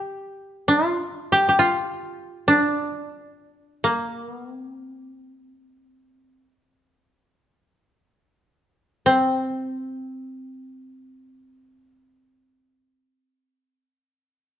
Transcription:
koto
Already playing: G4 A#4
0.68 F4
1.32 G4
1.49 G4
1.59 F4
2.48 D4
3.84 A#3
4.28 B3
4.56 C4
9.06 C4

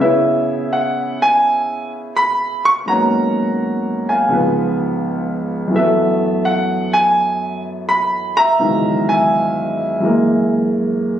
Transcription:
grand piano
Already playing: F#4
0.00 C#3 B3 C#4 E4 B4 E5
0.73 F#5
1.22 G#5
2.16 B5
2.65 C#6
2.86 G#2 F#3 A#3 B3 F#5 A#5
2.90 C#4
4.09 F5 G#5
4.29 C#2 G#2 F3
4.33 B3
5.68 F#2 E3
5.73 F#3 A3 A4 E5
5.79 B3
6.45 F#5
6.93 G#5
7.89 B5
8.37 E5 A#5
8.59 C#2 G#2 D#3 E3 F#3 B3
9.09 E5 G#5
10.00 F#2 E3 G#3
10.05 A#3

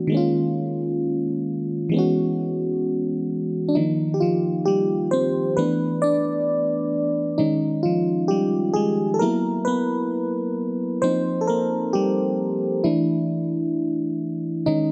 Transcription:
fm electric piano
Already playing: E3 A3 B3 D4 F#4
0.07 D#3 G#3
0.12 A#3 C#4
0.17 F4
1.89 E3 G#3
1.94 B3 C#4
1.98 F#4
3.69 D4
3.75 D#3 F3 A#3 D#4
4.14 G4
4.20 F3 F4
4.65 G3 G4
5.11 C4 C5
5.57 E3 A3 B3 D4 B4
6.02 D4 D5
7.38 D#3 G#3 C#4 D#4
7.83 F3 F4
8.28 G3 G4
8.74 G#3 G#4
9.14 A4
9.19 F#3 A#3 B3 E4 A#4
9.65 B3 B4
11.02 F3 A#3 C4 D#4 C5
11.41 A4
11.47 A#3 A#4
11.93 G3 G4
12.84 E3 A3 D4 E4
14.66 D#3 G#3 C#4 D#4

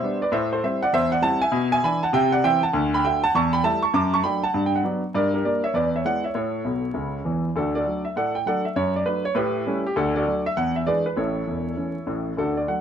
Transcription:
grand piano
Already playing: C5 E5
0.02 G3 B3 D4
0.22 B4 D5
0.32 A2 C5 E5
0.53 A4 C5
0.64 G3 C4 E4 C5 E5
0.82 D5 F#5
0.93 E2 C5 E5
1.12 D5 F#5
1.22 G3 C4 E4 F#5 A5
1.41 E5 G#5
1.52 B2
1.72 E5 G#5
1.83 E3 D4 E4 G#5 B5
2.03 F#5 A5
2.13 C3 E5 G5
2.32 D5 F#5
2.44 E3 C4 E4 E5 G5
2.63 F#5 A5
2.73 D2
2.94 G5 B5
3.04 D3 A3 F#4 E5 G5
3.24 F#5 A5
3.35 E2 A5 C#6
3.53 G5 B5
3.63 G3 A3 E4 E5 A5
3.83 A5 C#6
3.94 F#2 A5 D6
4.14 A5 C#6
4.24 F#3 A3 D4 G5 B5
4.43 F#5 A5
4.54 G2
4.66 G5
4.76 F#5
4.84 F#3 B3 D4
5.15 G2 A#4 D5
5.34 G4 A#4
5.45 G3 A#3 D4 A#4 D5
5.64 C#5 E5
5.74 E2 B4 D5
5.96 C#5 E5
6.05 G#3 B3 E4 D5 F#5
6.24 C#5 E5
6.35 A2 A4 C#5
6.64 B1 B2
6.94 C#2 C#3
7.25 E2 E3
7.56 D2 D4 F#4 A4
7.75 F#4 A4 D5
7.86 F#3 A3 D4
8.05 E5
8.16 A2 A4 D5 F#5
8.35 G5
8.46 F#3 A3 D4 A4 D5 F#5
8.65 E5
8.76 F#2 C#5
8.96 D5
9.06 F#3 A3 D4 B4
9.25 C#5
9.35 A2 E4 G4 B4
9.67 G3 A3 C#4
9.86 G4
9.96 D2 D4 F#4 A4
10.16 F#4 A4 D5
10.27 F#3 A3 D4
10.46 E5
10.57 E2 F#5
10.76 E5
10.86 E3 G#3 D4 G#4 B4 D5
11.06 B4
11.17 A1 A2 E4 A4 C#5
11.47 E1 E2
11.76 E3 A3 C#4
12.07 A1 A2
12.37 D2 D4 F#4 A4
12.57 D5
12.68 F#3 A3 D4 F#5

